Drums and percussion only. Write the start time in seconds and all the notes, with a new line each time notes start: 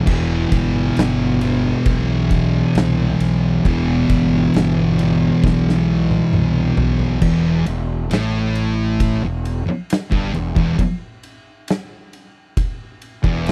0.07 kick, crash
0.52 kick, ride
0.96 snare, ride
1.41 ride
1.86 kick, ride
2.31 kick, ride
2.75 snare, ride
3.20 snare, ride
3.65 kick, ride
4.09 kick, ride
4.54 snare, ride
4.99 ride
5.44 kick, snare
5.69 snare
6.11 high tom
6.33 mid tom
6.77 floor tom
6.99 floor tom
7.21 kick, crash
7.66 ride
8.11 snare, ride
8.55 ride
9.00 kick, ride
9.45 ride
9.90 snare, ride
10.12 kick
10.34 ride
10.56 kick
10.79 kick, ride
11.23 ride
11.68 snare, ride
12.13 ride
12.57 kick, ride
13.02 ride
13.24 kick
13.46 ride